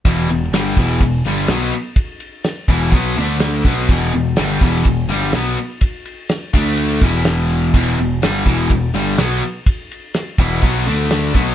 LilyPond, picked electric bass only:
\new Staff \with { instrumentName = "Picked electric bass" } { \clef bass \time 4/4 \key d \lydian \tempo 4 = 125 e,,8 e,,8 g,,8 e,,8 e,,8 g,,8 b,,8 r8 | r4. e,,8 b,,8 d,4 b,,8 | e,,8 e,,8 g,,8 e,,8 e,,8 g,,8 b,,8 r8 | r4. d,4 e,,4. |
e,,8 e,,8 g,,8 e,,8 e,,8 g,,8 b,,8 r8 | r4. e,,8 b,,8 d,4 b,,8 | }